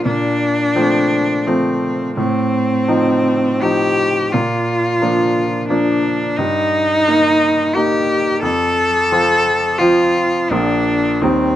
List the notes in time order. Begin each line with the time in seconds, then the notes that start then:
0.05 A#2 D4
0.75 F3 A3 C4
1.46 F3 A3 C4
2.16 A2 C4
2.88 F3 C4 D#4
3.62 F3 C4 D#4 G4
4.32 A#2 F4
5.02 F3 A#3 D4
5.69 F3 A#3 D4
6.37 G2 D#4
7.08 A#3 D#4
7.75 A#3 D#4 G4
8.42 F2 A4
9.12 F3 C4 F4
9.79 F3 C4 F4
10.51 A#1 F3 A#3 D4 F4
11.22 D#2 D#3 G3 C4